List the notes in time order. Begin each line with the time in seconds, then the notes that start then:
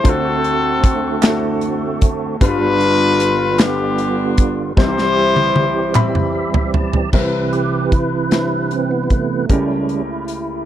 0.04 D2 D3 A3 C4 D4 F4 F#4 A4 C5, kick, closed hi-hat
0.11 F#4
0.44 closed hi-hat
0.84 kick, closed hi-hat
1.22 A3 D4 E4 A4, snare, clap, closed hi-hat
1.29 F#4
1.61 closed hi-hat
2.01 kick, closed hi-hat
2.40 G1 G2 D3 G3 B3 D4 F4 B4, kick, closed hi-hat
2.81 closed hi-hat
3.20 closed hi-hat
3.59 G3 B3 D4 F4 G4 B4, snare, clap, closed hi-hat
3.98 closed hi-hat
4.38 kick, closed hi-hat
4.77 C2 C3 E3 G3 C4 D#4 E4 G4 C5, kick, snare
4.84 E4
4.98 snare
5.36 high tom
5.56 high tom
5.94 G3 C4 E4 B5, clap, mid tom
6.15 mid tom
6.35 E5
6.54 floor tom
6.74 A5, floor tom
6.93 floor tom
7.12 C2 C3 E3 G3 C4 E4 A#4 B4, kick, crash
7.21 B4
7.53 G4, closed hi-hat
7.92 E4, kick, closed hi-hat
8.31 G3 C4 D4 B4, snare, closed hi-hat
8.39 E4
8.71 C4, closed hi-hat
8.91 B3
9.04 B3
9.10 C3 E3 A3 B3, kick, closed hi-hat
9.49 C#2 C#3 G3 A3 C#4 E4 G4 A#4, kick, closed hi-hat
9.89 closed hi-hat
10.28 closed hi-hat